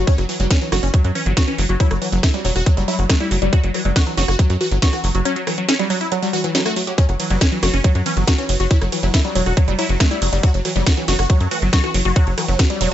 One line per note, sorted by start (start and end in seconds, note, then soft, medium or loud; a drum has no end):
0.07 0.17 F#3 medium
0.07 0.13 C#4 loud
0.07 kick loud
0.07 closed hi-hat medium
0.18 0.25 F#1 medium
0.18 0.24 F#3 medium
0.18 cross-stick soft
0.18 closed hi-hat medium
0.29 0.35 E3 medium
0.29 0.35 F#3 medium
0.29 open hi-hat loud
0.40 0.47 F#1 medium
0.40 0.46 F#3 medium
0.40 0.46 G3 medium
0.40 closed hi-hat medium
0.51 0.57 C#4 loud
0.51 kick loud
0.51 snare loud
0.51 closed hi-hat medium
0.61 0.68 E3 medium
0.61 0.67 F#3 medium
0.61 closed hi-hat medium
0.72 0.79 F#1 loud
0.72 0.78 F#3 medium
0.72 0.78 F#4 loud
0.72 cross-stick medium
0.72 snare medium
0.72 open hi-hat loud
0.83 0.90 F#1 medium
0.83 0.89 C#4 medium
0.83 closed hi-hat soft
0.94 1.00 F#3 medium
0.94 1.00 F#3 loud
0.94 kick loud
0.94 closed hi-hat medium
1.04 1.12 F#2 medium
1.04 1.10 F#3 medium
1.04 1.11 F#3 medium
1.04 closed hi-hat soft
1.15 1.22 E3 medium
1.15 1.21 C#4 medium
1.15 open hi-hat loud
1.26 1.33 G1 medium
1.26 1.32 F#3 medium
1.26 closed hi-hat medium
1.37 1.43 F#3 medium
1.37 1.46 F#4 loud
1.37 kick loud
1.37 cross-stick soft
1.37 snare loud
1.37 closed hi-hat medium
1.48 1.54 E3 medium
1.48 1.54 C#4 medium
1.48 closed hi-hat medium
1.58 1.66 F#1 loud
1.58 1.64 F#3 medium
1.58 open hi-hat loud
1.69 1.77 F#1 medium
1.69 1.75 F#3 medium
1.69 1.73 F#4 medium
1.69 closed hi-hat medium
1.80 1.90 F#3 loud
1.80 1.86 E4 loud
1.80 kick loud
1.80 closed hi-hat medium
1.91 1.98 F#1 medium
1.91 1.97 F#3 medium
1.91 cross-stick medium
1.91 closed hi-hat medium
2.02 2.08 E3 medium
2.02 2.08 F#3 medium
2.02 open hi-hat loud
2.12 2.20 F#1 medium
2.12 2.22 F#3 medium
2.12 2.18 F#3 medium
2.12 closed hi-hat medium
2.23 2.29 E4 loud
2.23 kick loud
2.23 snare loud
2.23 closed hi-hat medium
2.34 2.40 F#3 medium
2.34 2.43 G3 loud
2.34 closed hi-hat medium
2.45 2.52 E1 medium
2.45 2.51 F#3 loud
2.45 2.51 F#3 medium
2.45 open hi-hat loud
2.56 2.63 E1 medium
2.56 2.62 F#4 loud
2.56 cross-stick soft
2.56 closed hi-hat medium
2.66 2.76 F#3 loud
2.66 2.72 F#3 medium
2.66 kick loud
2.66 closed hi-hat medium
2.77 2.84 F#1 medium
2.77 2.83 F#3 medium
2.77 2.81 G3 loud
2.77 closed hi-hat medium
2.88 2.92 F#3 loud
2.88 2.94 E4 loud
2.88 open hi-hat loud
2.99 3.06 F#1 medium
2.99 3.05 F#3 medium
2.99 closed hi-hat medium
3.10 3.15 F#3 medium
3.10 3.16 A3 medium
3.10 kick loud
3.10 cross-stick medium
3.10 snare loud
3.10 closed hi-hat medium
3.20 3.30 G3 loud
3.20 3.26 E4 medium
3.20 closed hi-hat medium
3.31 3.38 F#1 loud
3.31 3.37 F#3 medium
3.31 open hi-hat loud
3.42 3.49 F#1 medium
3.42 3.48 F#3 medium
3.42 3.51 G3 loud
3.42 closed hi-hat medium
3.53 3.62 F#3 medium
3.53 3.59 F#4 loud
3.53 kick loud
3.53 closed hi-hat loud
3.63 3.71 F#1 medium
3.63 3.69 F#3 medium
3.63 closed hi-hat medium
3.74 3.81 E3 medium
3.74 3.80 F#3 medium
3.74 cross-stick soft
3.74 open hi-hat loud
3.85 3.92 F#1 medium
3.85 3.91 F#3 medium
3.85 3.91 G3 medium
3.85 closed hi-hat medium
3.96 4.02 F#4 loud
3.96 kick loud
3.96 snare loud
3.96 closed hi-hat medium
4.07 4.13 E3 medium
4.07 4.13 F#3 medium
4.07 closed hi-hat medium
4.17 4.25 F#1 medium
4.17 4.23 F#3 medium
4.17 4.24 F#4 loud
4.17 snare medium
4.17 open hi-hat loud
4.28 4.36 F#1 medium
4.28 4.34 F#4 loud
4.28 cross-stick medium
4.28 closed hi-hat medium
4.39 4.45 F#3 loud
4.39 4.45 F#3 medium
4.39 kick loud
4.39 closed hi-hat loud
4.50 4.57 F#2 medium
4.50 4.56 F#3 medium
4.50 closed hi-hat medium
4.61 4.67 E3 medium
4.61 4.67 F#4 medium
4.61 open hi-hat loud
4.71 4.79 G1 medium
4.71 4.77 F#3 medium
4.71 closed hi-hat medium
4.82 4.88 F#3 medium
4.82 4.92 F#4 loud
4.82 kick loud
4.82 snare loud
4.82 closed hi-hat medium
4.93 4.99 E3 medium
4.93 4.99 F#4 medium
4.93 cross-stick soft
4.93 closed hi-hat medium
5.04 5.11 F#1 loud
5.04 5.10 F#3 medium
5.04 open hi-hat loud
5.15 5.22 F#1 medium
5.15 5.21 F#3 medium
5.15 5.18 F#4 medium
5.15 closed hi-hat medium
5.25 5.35 F#3 loud
5.25 5.31 C#4 loud
5.25 closed hi-hat loud
5.36 5.42 F#3 medium
5.36 closed hi-hat medium
5.47 5.53 E3 medium
5.47 5.53 F#3 medium
5.47 cross-stick medium
5.47 open hi-hat loud
5.58 5.67 F#3 medium
5.58 5.64 F#3 medium
5.58 closed hi-hat medium
5.69 5.75 C#4 loud
5.69 snare loud
5.69 closed hi-hat medium
5.79 5.85 F#3 medium
5.79 5.89 G3 loud
5.79 closed hi-hat medium
5.90 5.96 F#3 medium
5.90 5.96 F#3 loud
5.90 open hi-hat loud
6.01 6.07 E4 medium
6.01 closed hi-hat medium
6.12 6.18 F#3 medium
6.12 6.21 F#3 loud
6.12 cross-stick soft
6.12 closed hi-hat loud
6.22 6.28 F#3 medium
6.22 6.26 G3 loud
6.22 open hi-hat medium
6.33 6.43 E3 medium
6.33 6.39 F#4 loud
6.33 open hi-hat loud
6.44 6.50 E3 loud
6.44 6.50 F#3 medium
6.44 closed hi-hat medium
6.55 6.61 F#3 medium
6.55 snare loud
6.55 closed hi-hat medium
6.66 6.72 A3 medium
6.66 6.72 F#4 loud
6.66 cross-stick medium
6.66 closed hi-hat medium
6.76 6.82 F#3 medium
6.76 open hi-hat loud
6.87 6.93 F#3 medium
6.87 6.97 G4 medium
6.87 closed hi-hat medium
6.98 7.08 F#3 medium
6.98 7.04 C#4 loud
6.98 kick loud
6.98 closed hi-hat loud
7.09 7.16 F#1 medium
7.09 7.15 F#3 medium
7.09 cross-stick soft
7.09 closed hi-hat medium
7.20 7.26 E3 medium
7.20 7.26 F#3 medium
7.20 open hi-hat loud
7.20 ride medium
7.30 7.38 F#1 medium
7.30 7.36 F#3 medium
7.30 7.37 G3 medium
7.30 7.91 B3 medium
7.30 closed hi-hat medium
7.41 7.47 C#4 loud
7.41 kick loud
7.41 snare loud
7.41 closed hi-hat loud
7.52 7.58 E3 medium
7.52 7.58 F#3 medium
7.52 closed hi-hat medium
7.63 7.70 F#1 medium
7.63 7.69 F#3 medium
7.63 7.69 F#4 loud
7.63 cross-stick medium
7.63 snare medium
7.63 open hi-hat loud
7.63 ride medium
7.74 7.81 F#1 medium
7.74 7.80 C#4 loud
7.74 closed hi-hat medium
7.84 7.91 F#3 loud
7.84 7.90 F#3 medium
7.84 kick loud
7.84 closed hi-hat loud
7.95 8.02 F#2 medium
7.95 8.01 F#3 medium
7.95 closed hi-hat medium
8.06 8.12 E3 medium
8.06 8.13 B3 medium
8.06 8.12 C#4 medium
8.06 open hi-hat loud
8.06 ride medium
8.17 8.24 G1 medium
8.17 8.23 F#3 medium
8.17 8.24 B3 medium
8.17 closed hi-hat medium
8.28 8.34 F#3 medium
8.28 8.37 F#4 loud
8.28 kick loud
8.28 cross-stick soft
8.28 snare loud
8.28 closed hi-hat loud
8.38 8.45 E3 medium
8.38 8.44 C#4 loud
8.38 closed hi-hat medium
8.49 8.56 F#1 loud
8.49 8.55 F#3 medium
8.49 open hi-hat loud
8.49 ride medium
8.60 8.67 F#1 medium
8.60 8.66 F#3 medium
8.60 8.64 F#4 medium
8.60 closed hi-hat medium
8.71 8.80 F#3 loud
8.71 8.77 E4 loud
8.71 kick loud
8.71 closed hi-hat loud
8.81 8.89 F#1 medium
8.81 8.87 F#3 medium
8.81 cross-stick medium
8.81 closed hi-hat medium
8.92 8.99 E3 medium
8.92 8.98 F#3 medium
8.92 open hi-hat loud
8.92 ride medium
9.03 9.10 F#1 medium
9.03 9.13 F#3 medium
9.03 9.09 F#3 medium
9.03 9.10 E4 medium
9.03 closed hi-hat medium
9.14 9.21 E4 medium
9.14 9.20 E4 loud
9.14 kick loud
9.14 snare loud
9.14 closed hi-hat loud
9.25 9.31 F#3 medium
9.25 9.34 G3 loud
9.25 closed hi-hat medium
9.35 9.43 E1 loud
9.35 9.42 F#3 loud
9.35 9.41 F#3 medium
9.35 open hi-hat loud
9.35 ride medium
9.46 9.54 E1 medium
9.46 9.52 F#4 loud
9.46 cross-stick soft
9.46 closed hi-hat medium
9.57 9.63 F#3 medium
9.57 9.67 F#3 loud
9.57 kick loud
9.57 closed hi-hat loud
9.68 9.75 F#1 medium
9.68 9.74 F#3 medium
9.68 9.72 G3 loud
9.68 closed hi-hat medium
9.79 9.82 F#3 loud
9.79 9.85 E4 loud
9.79 open hi-hat loud
9.79 ride medium
9.89 9.97 F#1 medium
9.89 9.95 F#3 medium
9.89 closed hi-hat medium
10.00 10.06 F#3 medium
10.00 10.07 A3 medium
10.00 kick loud
10.00 cross-stick medium
10.00 snare loud
10.00 closed hi-hat medium
10.11 10.20 G3 loud
10.11 10.17 E4 loud
10.11 closed hi-hat medium
10.22 10.29 F#1 loud
10.22 10.28 F#3 medium
10.22 open hi-hat loud
10.22 ride medium
10.33 10.40 F#1 medium
10.33 10.38 F#3 medium
10.33 10.42 G3 loud
10.33 closed hi-hat medium
10.43 10.53 F#3 medium
10.43 10.49 F#4 loud
10.43 kick loud
10.43 closed hi-hat medium
10.54 10.61 F#1 medium
10.54 10.60 F#3 medium
10.54 closed hi-hat medium
10.65 10.71 E3 medium
10.65 10.71 F#3 medium
10.65 cross-stick soft
10.65 open hi-hat loud
10.65 ride medium
10.76 10.83 F#1 medium
10.76 10.82 F#3 medium
10.76 10.82 G3 medium
10.76 11.36 B3 medium
10.76 closed hi-hat medium
10.86 10.92 F#4 loud
10.86 kick loud
10.86 snare loud
10.86 closed hi-hat medium
10.97 11.04 E3 medium
10.97 11.03 F#3 medium
10.97 closed hi-hat medium
11.08 11.15 F#1 medium
11.08 11.14 F#3 medium
11.08 11.14 F#4 loud
11.08 snare medium
11.08 open hi-hat loud
11.08 ride medium
11.19 11.26 F#1 medium
11.19 11.25 F#4 medium
11.19 cross-stick medium
11.19 closed hi-hat soft
11.30 11.36 F#3 medium
11.30 11.36 F#3 loud
11.30 kick loud
11.30 closed hi-hat medium
11.40 11.48 F#2 medium
11.40 11.46 F#3 medium
11.40 11.47 F#3 medium
11.40 closed hi-hat soft
11.51 11.58 E3 medium
11.51 11.65 A3 medium
11.51 11.57 F#4 medium
11.51 open hi-hat loud
11.51 ride medium
11.62 11.69 G1 medium
11.62 11.68 F#3 medium
11.62 closed hi-hat medium
11.73 11.79 F#3 medium
11.73 11.82 F#4 loud
11.73 kick loud
11.73 snare loud
11.73 closed hi-hat medium
11.84 11.90 E3 medium
11.84 11.90 F#4 medium
11.84 cross-stick soft
11.84 closed hi-hat medium
11.94 12.02 F#1 loud
11.94 12.00 F#3 medium
11.94 open hi-hat loud
11.94 ride medium
12.05 12.13 F#1 medium
12.05 12.11 F#3 medium
12.05 12.09 F#4 medium
12.16 12.26 F#3 loud
12.16 12.22 F#4 loud
12.16 kick loud
12.16 closed hi-hat medium
12.27 12.34 F#1 medium
12.27 12.33 F#3 medium
12.27 closed hi-hat medium
12.38 12.44 E3 medium
12.38 12.44 F#3 medium
12.38 cross-stick medium
12.38 open hi-hat loud
12.38 ride medium
12.48 12.56 F#1 medium
12.48 12.55 E3 medium
12.48 12.54 F#3 medium
12.48 12.58 F#3 medium
12.48 closed hi-hat soft
12.59 12.66 E3 medium
12.59 12.65 F#4 loud
12.59 kick loud
12.59 snare loud
12.59 closed hi-hat medium
12.70 12.76 F#3 medium
12.70 12.79 G3 loud
12.70 closed hi-hat medium
12.81 12.88 E1 medium
12.81 12.87 F#3 medium
12.81 12.87 F#3 loud
12.81 open hi-hat loud
12.81 ride medium